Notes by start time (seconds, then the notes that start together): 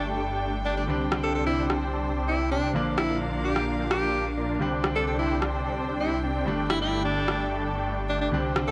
Already playing: G1 G2 D3 G3 A3 D4 A4 G5
0.07 A3 D4 G4 D5 A5
0.30 A3 D4 G4 D5 G5
0.42 A3 D4 G4 D5 G5
0.65 A3 D4 G4 D5 G5
0.77 A3 D4 G4 D5 G5
0.87 C2 D3 G3 C4 D4 G4 C5 D5 G5
1.12 cross-stick
1.23 C4 D4 G4 A4 D5 F5
1.35 C4 D4 G4 A4 D5 G5
1.47 E4
1.58 C4 D4 G4 D5 G5
1.70 C4 D4 G4 D5 A5, cross-stick
1.81 C4 D4 G4 D5 G5
1.93 C4 D4 G4 D5 A5
2.16 C4 D4 G4 D5 G5
2.28 C4 D4 E4 G4 D5 G5
2.51 C4 D4 G4 D5 G5
2.63 C4 D4 G4 D5 G5
2.73 A#1 D3 F3 A#3 D4 F4 A#4 D5 F5
2.98 E4, cross-stick
3.09 A#3 D4 F4 D5 F5
3.21 A#3 D4 F4 D5 A#5
3.44 A#3 D4 F4 G4 D5 F5
3.56 A#3 D4 F4 D5 G5, cross-stick
3.67 A#3 D4 F4 D5 F5
3.79 A#3 D4 F4 D5 G5
3.91 G4, cross-stick
4.02 A#3 D4 F4 D5 F5
4.14 A#3 D4 F4 D5 F5
4.37 A#3 D4 F4 D5 A#5
4.49 A#3 D4 F4 D5 F5
4.59 C2 D3 G3 C4 D4 G4 C5 D5 G5
4.84 cross-stick
4.95 C4 D4 G4 A4 D5 F5
5.07 C4 D4 G4 A4 D5 G5
5.19 E4
5.30 C4 D4 G4 D5 G5
5.42 C4 D4 G4 D5 A5, cross-stick
5.54 C4 D4 G4 D5 G5
5.65 C4 D4 G4 D5 A5
5.89 C4 D4 G4 D5 G5
6.00 C4 D4 E4 G4 D5 G5
6.23 C4 D4 G4 D5 G5
6.35 C4 D4 G4 D5 G5
6.45 G1 G2 D3 G3 A3 D4 G4 A4 D5 G5
6.70 E4, cross-stick
6.82 A3 D4 E4 G4 D5 F5
6.93 A3 D4 G4 D5 G5
7.05 D4
7.16 A3 D4 G4 D5 G5
7.28 A3 D4 G4 D5 A5, cross-stick
7.40 A3 D4 G4 D5 G5
7.51 A3 D4 G4 D5 A5
7.75 A3 D4 G4 D5 G5
7.86 A3 D4 G4 D5 G5
8.09 A3 D4 G4 D5 G5
8.21 A3 D4 G4 D5 G5
8.31 C2 D3 G3 C4 D4 G4 C5 D5 G5
8.56 cross-stick
8.68 C4 D4 G4 A4 D5 F5